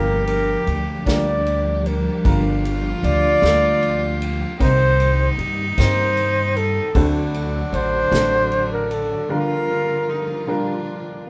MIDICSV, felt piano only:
0, 0, Header, 1, 2, 480
1, 0, Start_track
1, 0, Key_signature, -2, "minor"
1, 0, Tempo, 786370
1, 1372, Time_signature, 6, 3, 24, 8
1, 6896, End_track
2, 0, Start_track
2, 0, Title_t, "Felt piano"
2, 0, Program_c, 0, 0
2, 0, Note_on_c, 0, 31, 62
2, 0, Note_on_c, 0, 43, 62
2, 0, Note_on_c, 0, 55, 79
2, 0, Note_on_c, 0, 58, 67
2, 0, Note_on_c, 0, 62, 73
2, 0, Note_on_c, 0, 65, 71
2, 0, Note_on_c, 0, 70, 81
2, 36, Control_c, 0, 64, 127
2, 493, Note_off_c, 0, 55, 0
2, 493, Note_off_c, 0, 58, 0
2, 494, Note_off_c, 0, 62, 0
2, 495, Note_off_c, 0, 65, 0
2, 496, Note_off_c, 0, 70, 0
2, 648, Note_on_c, 0, 55, 67
2, 650, Note_on_c, 0, 58, 56
2, 651, Note_on_c, 0, 62, 61
2, 654, Note_on_c, 0, 65, 58
2, 655, Note_on_c, 0, 70, 78
2, 1219, Note_off_c, 0, 55, 0
2, 1220, Note_off_c, 0, 58, 0
2, 1220, Note_off_c, 0, 62, 0
2, 1222, Note_off_c, 0, 65, 0
2, 1222, Note_off_c, 0, 70, 0
2, 1346, Note_off_c, 0, 43, 0
2, 1347, Note_off_c, 0, 31, 0
2, 1370, Note_on_c, 0, 55, 71
2, 1372, Note_on_c, 0, 58, 69
2, 1373, Note_on_c, 0, 31, 61
2, 1373, Note_on_c, 0, 43, 62
2, 1375, Note_on_c, 0, 62, 66
2, 1376, Note_on_c, 0, 65, 69
2, 1376, Note_on_c, 0, 70, 90
2, 1380, Control_c, 0, 64, 0
2, 1495, Control_c, 0, 64, 127
2, 1939, Note_off_c, 0, 55, 0
2, 1939, Note_off_c, 0, 58, 0
2, 1941, Note_off_c, 0, 62, 0
2, 1942, Note_off_c, 0, 65, 0
2, 1942, Note_off_c, 0, 70, 0
2, 2086, Note_on_c, 0, 55, 71
2, 2088, Note_on_c, 0, 58, 61
2, 2089, Note_on_c, 0, 62, 65
2, 2090, Note_on_c, 0, 65, 62
2, 2092, Note_on_c, 0, 69, 77
2, 2655, Note_off_c, 0, 55, 0
2, 2656, Note_off_c, 0, 58, 0
2, 2657, Note_off_c, 0, 62, 0
2, 2657, Note_off_c, 0, 65, 0
2, 2658, Note_off_c, 0, 69, 0
2, 2786, Note_off_c, 0, 31, 0
2, 2786, Note_off_c, 0, 43, 0
2, 2806, Note_on_c, 0, 58, 76
2, 2806, Note_on_c, 0, 60, 71
2, 2807, Note_on_c, 0, 48, 64
2, 2807, Note_on_c, 0, 63, 78
2, 2809, Note_on_c, 0, 36, 61
2, 2809, Note_on_c, 0, 67, 76
2, 2811, Note_on_c, 0, 72, 79
2, 2817, Control_c, 0, 64, 0
2, 2913, Control_c, 0, 64, 127
2, 3374, Note_off_c, 0, 58, 0
2, 3374, Note_off_c, 0, 60, 0
2, 3374, Note_off_c, 0, 63, 0
2, 3375, Note_off_c, 0, 67, 0
2, 3376, Note_off_c, 0, 72, 0
2, 3527, Note_on_c, 0, 58, 66
2, 3529, Note_on_c, 0, 60, 67
2, 3530, Note_on_c, 0, 63, 59
2, 3533, Note_on_c, 0, 67, 70
2, 3535, Note_on_c, 0, 72, 79
2, 4091, Note_off_c, 0, 58, 0
2, 4092, Note_off_c, 0, 60, 0
2, 4093, Note_off_c, 0, 63, 0
2, 4094, Note_off_c, 0, 67, 0
2, 4095, Note_off_c, 0, 72, 0
2, 4217, Note_off_c, 0, 48, 0
2, 4218, Note_off_c, 0, 36, 0
2, 4242, Note_on_c, 0, 57, 87
2, 4243, Note_on_c, 0, 60, 76
2, 4244, Note_on_c, 0, 50, 65
2, 4245, Note_on_c, 0, 38, 72
2, 4245, Note_on_c, 0, 62, 75
2, 4246, Note_on_c, 0, 66, 77
2, 4250, Control_c, 0, 64, 0
2, 4250, Note_on_c, 0, 72, 88
2, 4358, Control_c, 0, 64, 127
2, 4806, Note_off_c, 0, 57, 0
2, 4807, Note_off_c, 0, 60, 0
2, 4807, Note_off_c, 0, 62, 0
2, 4808, Note_off_c, 0, 66, 0
2, 4810, Note_off_c, 0, 72, 0
2, 4951, Note_on_c, 0, 57, 77
2, 4953, Note_on_c, 0, 60, 64
2, 4958, Note_on_c, 0, 66, 70
2, 4959, Note_on_c, 0, 62, 68
2, 4959, Note_on_c, 0, 74, 77
2, 5520, Note_off_c, 0, 57, 0
2, 5521, Note_off_c, 0, 60, 0
2, 5524, Note_off_c, 0, 62, 0
2, 5524, Note_off_c, 0, 66, 0
2, 5524, Note_off_c, 0, 74, 0
2, 5653, Note_off_c, 0, 38, 0
2, 5653, Note_off_c, 0, 50, 0
2, 5671, Note_on_c, 0, 55, 82
2, 5671, Note_on_c, 0, 58, 74
2, 5673, Note_on_c, 0, 31, 66
2, 5674, Note_on_c, 0, 43, 66
2, 5675, Note_on_c, 0, 62, 80
2, 5676, Note_on_c, 0, 65, 74
2, 5678, Note_on_c, 0, 70, 86
2, 5684, Control_c, 0, 64, 0
2, 5773, Control_c, 0, 64, 127
2, 6243, Note_off_c, 0, 55, 0
2, 6243, Note_off_c, 0, 58, 0
2, 6245, Note_off_c, 0, 62, 0
2, 6246, Note_off_c, 0, 65, 0
2, 6247, Note_off_c, 0, 70, 0
2, 6393, Note_on_c, 0, 55, 81
2, 6394, Note_on_c, 0, 58, 75
2, 6398, Note_on_c, 0, 62, 76
2, 6398, Note_on_c, 0, 65, 74
2, 6399, Note_on_c, 0, 70, 83
2, 6896, Note_off_c, 0, 31, 0
2, 6896, Note_off_c, 0, 43, 0
2, 6896, Note_off_c, 0, 55, 0
2, 6896, Note_off_c, 0, 58, 0
2, 6896, Note_off_c, 0, 62, 0
2, 6896, Note_off_c, 0, 65, 0
2, 6896, Note_off_c, 0, 70, 0
2, 6896, End_track
0, 0, End_of_file